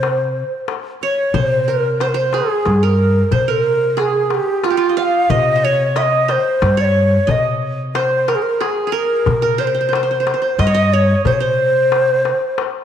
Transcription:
Already playing: C3 C5
0.03 darbuka tek
0.68 darbuka tek
1.01 C#5, darbuka ka
1.34 C3 C5, darbuka dum
1.68 A#4
2.00 C5, darbuka tek
2.08 A#4
2.14 C5
2.33 G#4, darbuka tek
2.65 G2, darbuka tek
2.83 A#4
3.31 C3 C5, darbuka dum
3.48 A#4
3.97 G#4, darbuka tek
4.30 G4, darbuka tek
4.64 F4, darbuka tek
4.70 G4
4.77 F4
4.89 D#5
4.97 F5 G5
5.03 F5
5.30 C3 D#5, darbuka dum
5.56 C5
5.64 C#5
5.96 D#5 E5, darbuka tek
6.02 D#5
6.28 C5, darbuka tek
6.62 G2, darbuka tek
6.77 C#5 D5
6.84 C#5
7.27 C3 D#5, darbuka dum
7.31 D#5
7.62 darbuka ka
7.95 C5, darbuka tek
8.28 A#4, darbuka tek
8.35 G#4
8.42 A#4
8.60 G#4, darbuka tek
8.87 G#4
8.92 A#4, darbuka ka
9.26 C3, darbuka dum
9.42 A#4
9.58 C5 C#5
9.64 C5
9.75 C5
9.81 C5
9.89 C5
9.93 C5, darbuka tek
10.03 C5
10.11 C5
10.20 C5
10.27 C5, darbuka tek
10.34 C5
10.42 C5
10.58 G2 D#5, darbuka tek
10.67 C#5
10.74 D#5
10.93 C#5
11.25 C3 C5, darbuka dum
11.33 C#5
11.40 C5
11.92 darbuka tek
12.25 darbuka tek
12.58 darbuka tek

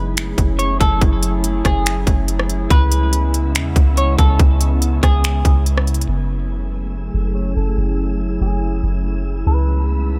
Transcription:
Already playing: F#1 F#3 A3 C#4 E4 G#4 B4 G#5
0.17 finger snap, closed hi-hat
0.38 F#1, kick, closed hi-hat
0.59 C#5, closed hi-hat
0.80 F#1 A4, kick, closed hi-hat
1.01 F#1, kick, closed hi-hat
1.23 closed hi-hat
1.44 closed hi-hat
1.65 F#1 G#4, kick, cross-stick, closed hi-hat
1.86 finger snap, closed hi-hat
2.07 F#1, kick, closed hi-hat
2.28 closed hi-hat
2.40 cross-stick
2.50 closed hi-hat
2.70 C#2 C#3 G#3 B3 C#4 B4 E5, kick, closed hi-hat
2.92 closed hi-hat
3.13 closed hi-hat
3.34 closed hi-hat
3.55 E2, finger snap, closed hi-hat
3.76 C#2, kick, closed hi-hat
3.97 C#5, closed hi-hat
4.19 C#2 A4, kick, closed hi-hat
4.39 C#2, kick, closed hi-hat
4.61 closed hi-hat
4.82 closed hi-hat
5.03 C#2 G#4, kick, cross-stick, closed hi-hat
5.24 finger snap, closed hi-hat
5.45 C#2, kick, closed hi-hat
5.66 closed hi-hat
5.78 cross-stick
5.87 closed hi-hat
5.94 closed hi-hat
6.01 closed hi-hat
6.08 F#1 F#3 A3 C#4 E4 G#4 B4 G#5 E6
7.14 F#1
7.35 C#5
7.56 F#1 A4
7.78 F#1
8.41 F#1 G#4
8.83 F#1
9.46 C#2 C#3 G#3 B3 D#4 B4 C#5 B5

